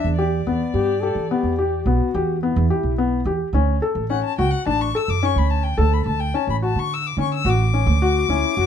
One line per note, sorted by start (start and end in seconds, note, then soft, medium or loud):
0.00 0.12 D4 medium
0.00 0.14 E5 medium
0.04 0.42 E2 medium
0.19 0.39 G4 medium
0.19 1.82 D5 medium
0.47 0.59 E2 medium
0.47 0.88 B3 medium
0.74 1.12 G2 medium
0.74 1.03 G4 loud
1.02 1.24 G4 medium
1.02 1.31 A4 loud
1.15 1.28 E3 medium
1.30 1.52 B3 medium
1.30 1.88 G4 medium
1.43 1.81 E2 medium
1.59 1.79 G4 medium
1.86 1.99 B1 loud
1.86 2.07 B3 medium
1.86 2.43 F#4 medium
2.14 2.52 E2 loud
2.14 2.35 G4 medium
2.43 2.63 B3 medium
2.43 3.51 E4 medium
2.56 2.69 E2 loud
2.70 2.91 G4 medium
2.83 3.21 B1 medium
2.98 3.19 B3 medium
3.25 3.38 E2 loud
3.25 3.47 G4 medium
3.53 3.79 D2 loud
3.53 3.75 C#4 medium
3.82 4.03 A4 medium
3.95 4.21 A1 medium
4.10 4.31 C#4 medium
4.10 4.23 F#5 medium
4.24 4.37 A5 loud
4.38 4.51 C#2 medium
4.38 4.59 F#4 medium
4.38 4.53 G5 medium
4.51 4.66 F#5 loud
4.66 4.91 A1 medium
4.66 4.87 D4 medium
4.66 4.83 A5 loud
4.81 4.98 C#6 loud
4.95 5.15 A4 medium
4.95 5.12 E6 loud
5.08 5.33 F#2 medium
5.08 5.27 D6 loud
5.23 5.64 C#4 medium
5.23 5.40 C#6 loud
5.36 5.74 D2 medium
5.36 5.52 B5 medium
5.51 5.65 A5 medium
5.64 5.79 G5 medium
5.78 6.03 D2 loud
5.78 6.19 A4 medium
5.78 5.94 A5 loud
5.93 6.06 B5 medium
6.06 6.31 D2 loud
6.06 6.21 A5 medium
6.20 6.37 G5 medium
6.34 6.55 C#4 medium
6.34 6.49 A5 medium
6.47 6.73 A1 medium
6.47 6.56 B5 loud
6.62 7.04 F#4 medium
6.62 6.81 A5 medium
6.76 7.14 D3 medium
6.76 6.95 C#6 loud
6.94 7.09 E6 loud
7.07 7.20 D6 medium
7.17 7.43 D3 loud
7.17 7.39 C#4 medium
7.21 7.33 C#6 loud
7.35 7.51 E6 loud
7.45 7.83 A1 loud
7.45 7.67 F#4 medium
7.49 8.66 D6 loud
7.74 7.95 C#4 medium
7.86 8.25 D2 loud
8.02 8.23 F#4 medium
8.02 8.32 F#4 medium
8.29 8.42 D2 loud
8.29 8.66 C#4 medium
8.29 8.57 E4 medium
8.57 8.66 F#2 loud
8.57 8.66 F#4 loud